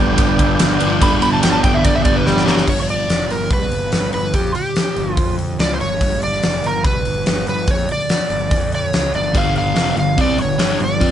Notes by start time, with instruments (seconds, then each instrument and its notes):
Already playing: picked electric bass G1, distorted electric guitar G2 D3 G3 B3 D4, tonewheel organ B4 D5 G5
0.18 picked electric bass G1, kick, ride
0.39 picked electric bass G1, kick, ride
0.59 picked electric bass G1, snare, ride
0.80 picked electric bass G1, distorted electric guitar G2 D3 G3 B3 D4, ride
1.01 picked electric bass G1, distorted electric guitar G2 D3 G3 B3 D4, electric slide guitar B5, kick, ride
1.22 picked electric bass G1, electric slide guitar B5, ride
1.33 electric slide guitar A5
1.43 picked electric bass G1, electric slide guitar G5, snare, ride
1.52 electric slide guitar A5
1.63 picked electric bass G1, electric slide guitar G5, kick, ride
1.74 electric slide guitar E5
1.84 picked electric bass G1, electric slide guitar D5, kick, ride
1.95 electric slide guitar E5
2.05 picked electric bass G1, electric slide guitar D5, kick, ride
2.16 electric slide guitar B4
2.26 picked electric bass G1, electric slide guitar G4 D5, snare
2.37 snare
2.46 picked electric bass G1, distorted electric guitar G2 D3 G3 B3 D4, electric slide guitar C#5, snare
2.57 snare
2.68 picked electric bass G1, electric slide guitar C#5, kick, crash
2.82 electric slide guitar C#5
2.89 electric slide guitar D5, open hi-hat
3.08 picked electric bass F1, snare, open hi-hat
3.29 picked electric bass G1, electric slide guitar A#4, open hi-hat
3.51 picked electric bass C2, electric slide guitar B4, kick, open hi-hat
3.71 picked electric bass G1, open hi-hat
3.92 picked electric bass G1, snare, open hi-hat
4.13 picked electric bass G1, electric slide guitar B4, open hi-hat
4.34 picked electric bass F2, electric slide guitar G4, kick, open hi-hat
4.55 electric slide guitar G4, open hi-hat
4.76 snare, open hi-hat
4.96 picked electric bass G1, open hi-hat
5.12 electric slide guitar F4
5.17 picked electric bass F2, kick, open hi-hat
5.39 open hi-hat
5.59 picked electric bass C#2, electric slide guitar D5, snare, open hi-hat
5.74 electric slide guitar C5
5.80 picked electric bass G1, electric slide guitar C#5, open hi-hat
6.01 picked electric bass G1, kick, open hi-hat
6.22 electric slide guitar D5, open hi-hat
6.33 snare
6.43 picked electric bass F1, snare, open hi-hat
6.64 picked electric bass G1, electric slide guitar A#4, open hi-hat
6.84 picked electric bass C2, electric slide guitar B4, kick, open hi-hat
7.05 picked electric bass G1, open hi-hat
7.26 picked electric bass G1, snare, open hi-hat
7.47 picked electric bass G1, electric slide guitar B4, open hi-hat
7.68 picked electric bass F2, electric slide guitar C#5, kick, open hi-hat
7.89 electric slide guitar D5, open hi-hat
8.09 snare, open hi-hat
8.30 picked electric bass G1, open hi-hat
8.51 picked electric bass F2, kick, open hi-hat
8.72 electric slide guitar C#5, open hi-hat
8.92 picked electric bass C#2, snare, open hi-hat
9.12 picked electric bass G1, electric slide guitar D5, open hi-hat
9.34 picked electric bass G1, distorted electric guitar G2 D3 G3, tonewheel organ B3 D4 G4 B4, electric slide guitar F5, kick, open hi-hat
9.56 electric slide guitar F5, open hi-hat
9.75 picked electric bass F1, distorted electric guitar F2 C3 F3, snare, open hi-hat
9.96 picked electric bass G1, distorted electric guitar G2 D3, electric slide guitar F5, open hi-hat
10.17 picked electric bass C2, distorted electric guitar C3 G3 C4, electric slide guitar D5, kick, open hi-hat
10.38 picked electric bass G1, distorted electric guitar G2 D3, open hi-hat
10.42 electric slide guitar C#5
10.58 picked electric bass G1, distorted electric guitar G2 D3 G3, snare, open hi-hat
10.79 picked electric bass G1, distorted electric guitar G2 D3, open hi-hat
10.84 electric slide guitar D5
11.00 picked electric bass F2, distorted electric guitar F3 C4 F4, kick, open hi-hat